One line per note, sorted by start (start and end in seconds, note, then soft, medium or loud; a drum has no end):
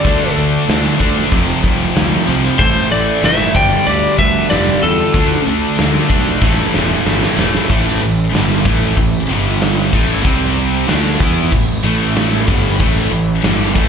0.00 0.35 D3 loud
0.00 1.29 D4 medium
0.00 0.33 A4 medium
0.00 1.29 A4 medium
0.00 0.34 D5 medium
0.05 0.24 D2 loud
0.05 0.36 A3 loud
0.05 0.36 D4 loud
0.05 1.32 E5 medium
0.05 kick loud
0.05 open hi-hat medium
0.36 0.56 D2 medium
0.36 0.67 D3 medium
0.36 0.68 A3 loud
0.36 0.68 D4 loud
0.68 0.88 D2 loud
0.68 0.98 D3 medium
0.68 0.99 A3 medium
0.68 0.99 D4 loud
0.68 snare loud
0.68 open hi-hat medium
0.99 1.19 D2 medium
0.99 1.29 D3 medium
0.99 1.30 A3 medium
0.99 1.30 D4 loud
0.99 kick medium
1.30 1.51 F1 medium
1.30 1.61 F2 loud
1.30 1.62 C3 loud
1.30 1.62 F3 loud
1.30 2.59 F4 medium
1.30 2.59 G5 medium
1.30 kick medium
1.30 open hi-hat medium
1.34 2.59 C5 medium
1.62 1.83 C2 medium
1.62 1.94 F2 loud
1.62 1.94 C3 loud
1.62 1.95 F3 loud
1.62 kick medium
1.95 2.15 D2 medium
1.95 2.26 F2 medium
1.95 2.26 C3 loud
1.95 2.27 F3 loud
1.95 snare loud
1.95 open hi-hat medium
2.27 2.47 C2 medium
2.27 2.57 F2 medium
2.27 2.57 C3 medium
2.27 2.58 F3 medium
2.44 snare soft
2.59 2.79 A1 loud
2.59 2.90 A2 loud
2.59 2.91 E3 loud
2.59 2.91 A3 loud
2.59 3.55 A3 medium
2.59 3.54 E4 medium
2.59 2.89 A4 medium
2.59 2.89 C5 loud
2.59 3.55 C5 medium
2.59 kick loud
2.59 open hi-hat medium
2.91 3.11 A1 medium
2.91 3.21 A2 medium
2.91 3.22 E3 medium
2.91 3.23 A3 medium
2.91 3.21 A4 medium
2.91 3.24 D5 medium
3.22 3.42 F#1 loud
3.22 3.53 A2 loud
3.22 3.53 E3 loud
3.22 3.54 A3 loud
3.22 3.53 C5 medium
3.22 3.57 E5 loud
3.22 snare loud
3.22 open hi-hat medium
3.54 3.74 G1 medium
3.54 3.85 G2 loud
3.54 3.86 D3 loud
3.54 3.87 G3 loud
3.54 5.13 G3 medium
3.54 5.12 D4 medium
3.54 5.12 A4 medium
3.54 3.84 D5 medium
3.54 3.85 G5 loud
3.54 kick loud
3.86 4.06 D2 medium
3.86 4.17 G2 medium
3.86 4.18 D3 loud
3.86 4.19 G3 loud
3.86 4.16 G4 medium
3.86 4.18 D5 loud
3.86 open hi-hat medium
4.19 4.38 D2 medium
4.19 4.49 G2 loud
4.19 4.50 D3 loud
4.19 4.50 G3 loud
4.19 4.49 B4 medium
4.19 4.50 E5 medium
4.19 kick medium
4.50 4.70 F1 medium
4.50 4.82 G2 medium
4.50 4.83 D3 medium
4.50 4.84 G3 loud
4.50 4.81 G4 medium
4.50 4.83 D5 medium
4.50 snare loud
4.50 open hi-hat medium
4.83 5.02 E2 medium
4.83 5.13 G2 medium
4.83 5.12 D3 medium
4.83 5.13 G3 loud
4.83 5.42 F4 medium
4.83 5.42 A4 medium
5.13 5.34 D2 loud
5.13 5.45 D3 medium
5.13 5.46 A3 medium
5.13 6.40 D4 medium
5.13 5.46 D4 loud
5.13 6.40 A4 medium
5.13 6.40 E5 medium
5.13 kick loud
5.13 open hi-hat medium
5.47 5.66 D2 medium
5.47 5.77 D3 medium
5.47 5.78 A3 medium
5.47 5.78 D4 medium
5.78 5.98 D2 loud
5.78 6.08 D3 loud
5.78 6.09 A3 loud
5.78 6.10 D4 loud
5.78 snare loud
5.78 open hi-hat medium
6.10 6.29 B1 medium
6.10 6.40 D3 medium
6.10 6.40 A3 medium
6.10 6.40 D4 medium
6.10 kick medium
6.42 6.61 A1 medium
6.42 6.73 A2 loud
6.42 6.73 E3 loud
6.42 6.74 A3 loud
6.42 7.67 A3 medium
6.42 7.68 E4 medium
6.42 7.68 B4 medium
6.42 kick medium
6.42 snare medium
6.74 6.93 E1 medium
6.74 7.04 A2 loud
6.74 7.05 E3 loud
6.74 7.05 A3 loud
6.74 snare medium
7.05 7.25 G1 medium
7.05 7.37 A2 medium
7.05 7.37 E3 medium
7.05 7.38 A3 medium
7.05 snare medium
7.23 snare medium
7.38 7.57 E1 medium
7.38 7.68 A2 medium
7.38 7.68 E3 medium
7.38 7.68 A3 loud
7.38 snare loud
7.55 snare medium
7.69 7.99 A1 loud
7.69 8.00 A2 medium
7.69 8.01 E3 loud
7.69 9.27 A3 medium
7.69 8.01 A3 loud
7.69 9.27 E4 medium
7.69 9.27 B4 medium
7.69 kick loud
7.69 crash loud
8.02 8.31 A1 medium
8.02 8.27 A2 medium
8.02 8.27 E3 medium
8.02 open hi-hat medium
8.33 8.63 G1 loud
8.33 8.64 G2 loud
8.33 8.64 D3 loud
8.33 8.65 G3 loud
8.33 snare loud
8.33 open hi-hat medium
8.64 8.95 A1 medium
8.64 8.96 A2 medium
8.64 8.96 E3 medium
8.64 8.96 A3 loud
8.64 kick loud
8.64 open hi-hat medium
8.97 9.27 A1 medium
8.97 9.23 A2 medium
8.97 9.23 E3 medium
8.97 kick medium
8.97 open hi-hat medium
9.28 9.89 G1 medium
9.28 9.92 G2 medium
9.28 9.92 D3 loud
9.28 9.92 G3 medium
9.28 9.92 D4 medium
9.28 9.92 A4 medium
9.28 open hi-hat medium
9.61 snare loud
9.61 open hi-hat medium
9.93 10.22 A1 loud
9.93 10.24 A2 loud
9.93 10.24 E3 medium
9.93 10.25 A3 loud
9.93 kick loud
9.93 crash loud
10.23 10.84 C2 loud
10.23 10.87 C3 medium
10.23 10.88 G3 medium
10.23 10.87 C4 medium
10.23 10.88 C4 loud
10.23 10.87 G4 medium
10.23 10.87 D5 medium
10.23 kick loud
10.56 open hi-hat medium
10.87 11.18 D2 medium
10.87 11.19 D3 medium
10.87 13.88 A3 medium
10.87 11.19 A3 medium
10.87 11.20 D4 medium
10.87 13.88 E4 medium
10.87 13.88 B4 medium
10.87 snare loud
10.87 open hi-hat medium
11.19 11.50 E2 medium
11.19 11.51 E3 medium
11.19 11.51 B3 loud
11.19 11.51 E4 loud
11.19 kick loud
11.19 open hi-hat medium
11.52 11.82 A1 medium
11.52 11.77 A2 medium
11.52 11.78 E3 medium
11.52 kick medium
11.52 open hi-hat medium
11.84 12.44 A1 medium
11.84 12.47 A2 medium
11.84 12.47 E3 medium
11.84 12.48 A3 loud
11.84 open hi-hat medium
12.16 snare loud
12.16 open hi-hat medium
12.48 12.78 G1 loud
12.48 12.79 G2 medium
12.48 12.79 D3 loud
12.48 12.79 G3 loud
12.48 kick loud
12.48 open hi-hat medium
12.79 13.10 A1 medium
12.79 13.10 A2 medium
12.79 13.11 E3 medium
12.79 13.11 A3 loud
12.79 kick loud
12.79 open hi-hat medium
13.11 13.41 A1 medium
13.11 13.37 A2 medium
13.11 13.38 E3 medium
13.11 open hi-hat medium
13.43 13.73 G1 medium
13.43 13.75 G2 loud
13.43 13.75 D3 loud
13.43 13.75 G3 loud
13.43 snare loud
13.43 open hi-hat medium
13.75 13.88 A1 medium
13.75 13.88 A2 medium
13.75 13.88 E3 loud
13.75 13.88 A3 loud
13.75 kick loud
13.75 open hi-hat medium